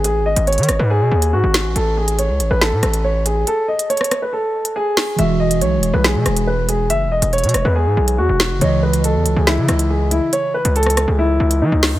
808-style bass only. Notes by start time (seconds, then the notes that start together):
0.04 A1
0.20 G#1
0.36 G#1
0.58 D#3
0.69 G#1
0.79 G#2
1.01 B2
1.11 D#2
1.33 G#2
1.44 G#1
1.65 A1
1.76 A1
2.29 C#2
2.40 A1
2.51 A1
2.72 A2
2.83 A1
5.19 E1
5.61 B1
5.77 E1
5.94 B1
6.15 B2
6.26 E1
6.90 F#1
7.06 E1
7.22 E1
7.43 B2
7.54 E1
7.65 E2
7.86 G#2
7.97 B1
8.19 E2
8.29 E1
8.51 F#1
8.61 C#2
9.15 E2
9.26 C#2
9.36 C#2
9.58 C#3
9.69 C#2
10.65 C#2
11.08 C#2
11.40 C#2
11.61 E3
11.72 C#2
11.94 G#2